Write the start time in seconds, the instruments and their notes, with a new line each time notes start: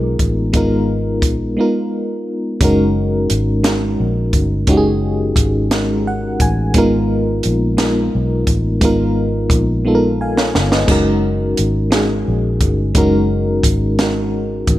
Already playing: fingered electric bass B1, fm electric piano G#3 B3 D#4 F4 G#4 A#4
0.19 fingered electric bass A1, kick, closed hi-hat
0.53 fingered electric bass G#1, fm electric piano G#3 B3 D#4 F4 A#4, kick, closed hi-hat
1.22 fingered electric bass A#1, kick, closed hi-hat
1.57 fm electric piano G#3 B3 D#4 F4 A#4
2.61 fingered electric bass F#1, fm electric piano G#3 C#4 D#4 F#4 A#4, kick, closed hi-hat
3.30 fingered electric bass G#1, closed hi-hat
3.64 fm electric piano G#3 C#4 D#4 F#4 A#4, snare, closed hi-hat
4.00 fingered electric bass A#1
4.33 fingered electric bass G1, kick, closed hi-hat
4.67 fingered electric bass F#1, fm electric piano G#3 C#4 D#4 F#4 G4, kick, closed hi-hat
4.77 fm electric piano G#4
5.36 fingered electric bass G#1, kick, closed hi-hat
5.71 fm electric piano G#3 C#4 D#4 F#4 A#4, snare, closed hi-hat
6.07 fm electric piano F#5
6.40 fingered electric bass A1, fm electric piano G#5, kick, closed hi-hat
6.74 fingered electric bass G#1, fm electric piano G#3 B3 D#4 F4, kick, closed hi-hat
6.78 fm electric piano A#4
7.43 fingered electric bass A#1, closed hi-hat
7.77 fm electric piano G#3 B3 D#4 F4 A#4, snare, closed hi-hat
8.15 fingered electric bass B1
8.47 fingered electric bass A1, kick, closed hi-hat
8.81 fingered electric bass G#1, fm electric piano G#3 B3 D#4 F4 A#4, kick, closed hi-hat
9.50 fingered electric bass A#1, kick, closed hi-hat
9.85 fm electric piano G#3 B3 D#4 F4 A4
9.95 fm electric piano A#4
10.21 fm electric piano F5 G#5
10.37 fm electric piano C#5 F5, snare
10.55 fingered electric bass G1, snare
10.72 fm electric piano B4 D#5, snare
10.88 fingered electric bass F#1, fm electric piano G#3 C#4 D#4 F#4 A#4, kick, splash
11.57 fingered electric bass G#1, closed hi-hat
11.91 fm electric piano G#3 C#4 D#4 F#4 G#4, snare, closed hi-hat
12.28 fingered electric bass A#1
12.61 fingered electric bass G1, kick, closed hi-hat
12.94 fingered electric bass F#1, fm electric piano G#3 C#4 D#4 F#4 A#4, kick, closed hi-hat
13.63 fingered electric bass G#1, kick, closed hi-hat
13.99 fm electric piano G#3 C#4 D#4 F#4 A#4, snare, closed hi-hat
14.67 fingered electric bass A1, kick, closed hi-hat